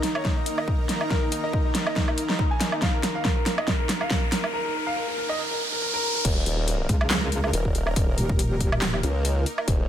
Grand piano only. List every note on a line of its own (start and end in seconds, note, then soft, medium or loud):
0.03 0.14 D#4 medium
0.15 0.24 C#5 medium
0.25 0.35 D#4 medium
0.37 0.45 D#4 medium
0.46 0.57 D#4 medium
0.58 0.66 D#5 medium
0.67 0.78 D#4 medium
0.89 0.99 D#4 medium
1.01 1.09 D#4 medium
1.10 1.21 A#4 medium
1.22 1.30 D#4 medium
1.32 1.42 D#4 medium
1.44 1.52 D#5 medium
1.53 1.64 D#4 medium
1.65 1.73 D#4 medium
1.75 1.85 D#4 medium
1.87 1.95 D#5 medium
1.96 2.07 D#4 medium
2.08 2.17 D#4 medium
2.29 2.38 D#4 medium
2.39 2.50 D#4 medium
2.51 2.59 G#5 medium
2.61 2.71 D#4 medium
2.72 2.81 D#4 medium
2.82 2.92 F5 medium
2.94 3.02 A#4 medium
3.03 3.14 A#4 medium
3.15 3.24 F5 medium
3.25 3.35 A#4 medium
3.37 3.45 A#4 medium
3.46 3.57 A#4 medium
3.58 3.67 D#5 medium
3.68 3.78 A#4 medium
3.79 3.88 A#4 medium
3.89 4.00 A#4 medium
4.01 4.09 F5 medium
4.10 4.21 A#4 medium
4.32 4.42 A#4 medium
4.44 4.52 A#4 medium
4.53 4.64 A#4 medium
4.65 4.73 A#4 medium
4.75 4.85 A#4 medium
4.87 4.95 F5 medium
4.96 5.06 A#4 medium
5.08 5.16 A#4 medium
5.18 5.28 A#4 medium
5.29 5.38 D#5 loud
5.39 5.49 A#4 medium
5.51 5.59 A#4 medium
5.72 5.80 A#4 medium
5.82 5.92 A#4 medium
5.94 6.02 A#4 medium
6.03 6.14 A#4 medium
6.15 6.24 A#4 medium